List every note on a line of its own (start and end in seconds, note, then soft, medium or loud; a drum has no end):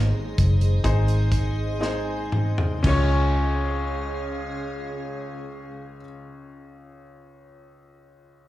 0.00 0.12 G#1 medium
0.00 0.83 G#2 medium
0.00 0.84 D#3 medium
0.00 0.83 G#3 medium
0.00 0.84 C4 medium
0.00 0.74 D#4 medium
0.00 0.84 D#4 medium
0.00 0.74 G#4 medium
0.00 0.85 G#4 medium
0.00 2.80 G#4 medium
0.00 0.75 C5 medium
0.00 1.79 C5 medium
0.00 2.80 C5 medium
0.00 2.80 D#5 medium
0.00 2.80 C6 medium
0.38 0.81 F#1 medium
0.38 kick medium
0.38 closed hi-hat medium
0.61 closed hi-hat soft
0.83 2.80 G#1 medium
0.83 1.79 G#3 medium
0.83 1.80 C4 medium
0.83 1.76 D#4 medium
0.83 1.80 D#4 medium
0.83 1.76 G#4 medium
0.83 1.81 G#4 medium
0.83 1.77 C5 medium
0.83 kick medium
0.83 closed hi-hat medium
1.08 closed hi-hat medium
1.32 kick medium
1.32 closed hi-hat medium
1.79 2.83 G#3 medium
1.79 5.30 C4 medium
1.79 2.79 D#4 medium
1.79 2.84 D#4 medium
1.79 2.79 G#4 medium
1.79 2.96 G#4 medium
1.79 2.80 C5 medium
1.79 snare medium
2.32 mid tom medium
2.58 floor tom medium
2.78 6.28 C#3 medium
2.83 5.98 C#2 medium
2.83 5.99 C#2 medium
2.83 6.33 G#3 medium
2.83 5.96 C#4 medium
2.83 5.97 C#4 medium
2.83 5.99 F4 medium
2.83 5.97 G#4 medium
2.83 5.97 C#5 medium
2.83 5.97 F5 medium
2.83 kick medium
2.83 crash medium
2.87 6.00 C#5 medium
2.87 6.02 C#5 medium
2.92 6.42 F4 medium
2.92 6.46 G#4 medium